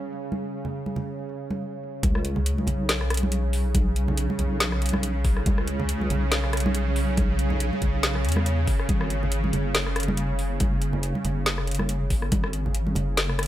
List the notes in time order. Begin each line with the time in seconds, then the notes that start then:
Already playing: C#3
0.32 high conga
0.65 low conga
0.86 high conga
0.96 low conga
1.51 high conga
2.03 C#2 C#3, kick, closed hi-hat, high conga
2.15 cross-stick
2.25 closed hi-hat
2.36 low conga
2.46 closed hi-hat
2.58 high conga
2.67 B1, closed hi-hat, low conga
2.89 snare, closed hi-hat
3.01 cross-stick
3.10 cross-stick, closed hi-hat
3.14 closed hi-hat
3.17 closed hi-hat
3.23 high conga
3.32 closed hi-hat
3.53 open hi-hat
3.75 kick, closed hi-hat, high conga
3.96 closed hi-hat
4.08 low conga
4.17 closed hi-hat
4.30 high conga
4.39 B1, closed hi-hat, low conga
4.60 snare, closed hi-hat
4.72 cross-stick
4.82 closed hi-hat
4.86 closed hi-hat
4.89 closed hi-hat
4.93 cross-stick, high conga
5.03 closed hi-hat
5.24 kick, open hi-hat
5.37 cross-stick
5.46 C#2, kick, closed hi-hat, high conga
5.58 cross-stick
5.68 closed hi-hat
5.80 low conga
5.89 closed hi-hat
6.01 high conga
6.10 B1, closed hi-hat, low conga
6.32 snare, closed hi-hat
6.44 cross-stick
6.53 cross-stick, closed hi-hat
6.57 closed hi-hat
6.60 closed hi-hat
6.66 high conga
6.75 closed hi-hat
6.96 open hi-hat
7.17 kick, closed hi-hat, high conga
7.39 closed hi-hat
7.50 low conga
7.60 closed hi-hat
7.73 high conga
7.82 B1, kick, closed hi-hat, low conga
8.03 snare, closed hi-hat
8.15 cross-stick
8.25 E2, closed hi-hat
8.29 closed hi-hat
8.32 closed hi-hat
8.36 cross-stick, high conga
8.46 closed hi-hat
8.67 kick, open hi-hat
8.79 cross-stick
8.89 G#1, kick, closed hi-hat, high conga
9.01 cross-stick
9.10 closed hi-hat
9.23 low conga
9.32 closed hi-hat
9.44 high conga
9.53 F#1, closed hi-hat, low conga
9.75 snare, closed hi-hat
9.86 cross-stick
9.96 cross-stick, closed hi-hat
10.00 closed hi-hat
10.03 closed hi-hat
10.08 high conga
10.17 closed hi-hat
10.39 open hi-hat
10.60 kick, closed hi-hat, high conga
10.82 closed hi-hat
10.93 low conga
11.03 closed hi-hat
11.15 high conga
11.25 F#1, closed hi-hat, low conga
11.46 snare, closed hi-hat
11.58 cross-stick
11.67 closed hi-hat
11.71 closed hi-hat
11.75 closed hi-hat
11.79 cross-stick, high conga
11.89 closed hi-hat
12.10 kick, open hi-hat
12.22 cross-stick
12.32 G#1, kick, closed hi-hat, high conga
12.44 cross-stick
12.53 closed hi-hat
12.66 low conga
12.75 closed hi-hat
12.87 high conga
12.95 F#1, closed hi-hat, low conga
13.17 snare, closed hi-hat
13.29 cross-stick
13.39 cross-stick, closed hi-hat
13.43 closed hi-hat